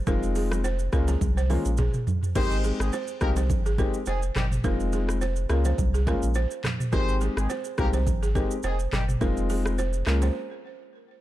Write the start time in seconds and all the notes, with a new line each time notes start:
0.07 F1 G#3 C4 D#4 F4 A#4, kick, low conga, shaker
0.23 shaker
0.35 G#4, open hi-hat, low bongo, shaker
0.52 cross-stick, low bongo, shaker
0.64 C5, high bongo, shaker
0.79 shaker
0.92 C#2 G#3 A#3 C#4 F4 A#4, kick, cross-stick, shaker
1.08 G#4, low bongo, shaker
1.21 C2, kick, high tom, low conga, shaker
1.37 C5, shaker
1.50 G#3 A#3 C#4 F4 A#4, open hi-hat, mid tom, low bongo, shaker
1.65 A#1, high bongo, shaker
1.77 G#4, kick, mid tom, high bongo, shaker
1.94 mid tom, shaker
2.07 floor tom, low conga, shaker
2.23 floor tom, shaker
2.35 G#1 G#3 C4 D#4 G4 A#4 C5, kick, crash, low conga, shaker
2.51 shaker
2.64 G#4, low bongo, shaker
2.80 G#1 D#3 G#3 C4 G#4, cross-stick, shaker
2.93 C5, high bongo, shaker
3.08 shaker
3.21 C2 G#3 A#3 C4 D#4 G4 A#4, kick, cross-stick, shaker
3.36 C5, low bongo, shaker
3.50 G#1, kick, low conga, shaker
3.66 G#4, shaker
3.78 G#3 C4 D#4 G4 A#4, kick, low bongo, shaker
3.94 shaker
4.06 F1 D#3 G#3 C4 G#4 C5, high bongo, shaker
4.23 shaker
4.35 G1 D#3 G3 C4 G4, cross-stick, clap, mid tom, low conga, shaker
4.52 mid tom, shaker
4.64 F1 G#3 C4 D#4 F4 A#4, kick, low conga, shaker
4.80 shaker
4.93 G#4, low bongo, shaker
5.09 cross-stick, shaker
5.21 C5, high bongo, shaker
5.36 shaker
5.50 C#2 G#3 A#3 C#4 F4 A#4, cross-stick, shaker
5.65 C5, low bongo, shaker
5.78 C2, kick, low conga, shaker
5.94 G#4, shaker
6.06 G#3 A#3 C#4 F4 A#4, kick, cross-stick, low bongo, shaker
6.22 A#1, shaker
6.34 C5, high bongo, shaker
6.51 shaker
6.64 cross-stick, clap, mid tom, low conga, shaker
6.80 mid tom, shaker
6.92 G#1 G#3 C4 D#4 G4 A#4 C5, kick, low conga, shaker
7.09 shaker
7.21 G#4, low bongo, shaker
7.37 G#1 D#3 G#3 C4 G#4, cross-stick, shaker
7.50 C5, high bongo, shaker
7.65 shaker
7.78 C2 G#3 A#3 C4 D#4 G4 A#4, kick, cross-stick, shaker
7.93 C5, low bongo, shaker
8.07 G#1, kick, low conga, shaker
8.23 G#4, shaker
8.35 G#3 C4 D#4 G4 A#4, kick, low bongo, shaker
8.51 shaker
8.63 F1 D#3 G#3 C4 G#4 C5, high bongo, shaker
8.79 shaker
8.92 G1 D#3 G3 C4 G4, cross-stick, clap, mid tom, low conga, shaker
9.09 mid tom, shaker
9.21 F1 G#3 C4 D#4 F4 A#4, kick, low conga, shaker
9.37 shaker
9.50 G#4, open hi-hat, low bongo, shaker
9.66 cross-stick, shaker
9.78 C5, high bongo, shaker
9.93 shaker
10.06 C#2 G#3 A#3 C#4 F4 A#4, cross-stick, clap, shaker
10.22 C5, low bongo, shaker